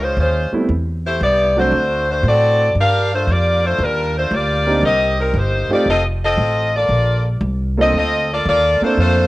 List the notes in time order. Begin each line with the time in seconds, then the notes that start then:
Already playing: C#2
0.02 G#3 C#4 F4 C5
0.17 D#2 G#3 C#4 F4 C5
0.52 G3 A3 B3 C4 E4, muted upright bass stroke
0.69 E2
1.07 A3 E4 G4 C5
1.21 C2 B3 E4 G4 D5
1.56 F#3 A3 C4 D4 F#4 C5
1.72 D2
2.11 A3 D4 F#4 C5
2.23 A2
2.28 C4 F#4 A4 D5
2.75 G2
2.81 D4 G4 A#4 F5
3.14 A3 D4 F4 C5
3.27 F2
3.31 A#3 F4 G4 D5
3.66 A3 D4 F4 C5
3.79 D#2
3.83 G3 D4 F4 A#4
4.18 A3 D4 F4 C5
4.31 D2 A#3 F4 G4 D5
4.67 A#3 C4 D4 D#4 G4
4.83 C2 C4 G4 A#4 D#5
5.20 G3 C4 D#4 A#4
5.34 G1
5.38 A#3 D#4 G4 C5
5.69 A3 C4 D#4 F4 G4, muted upright bass stroke
5.73 A#3 D#4 G4 D5
5.86 F1 F4
5.90 C4 A4 D#5
6.25 C4 F4 A4 D#5
6.37 A1
6.76 A#3 F4 A4 D5
6.89 A#1
7.41 C2
7.77 A#3 C4 D4 F4 A4
7.82 C4 F4 A4 D#5
7.93 D2
7.98 C4 F4 A4 D#5
8.34 A#3 F4 A4 D5
8.46 D#2 A#3 F4 A4 D5
8.81 A3 A#3 C4 D4 F4 A4 C5, muted upright bass stroke
8.97 F2 A3 D4 F4 C5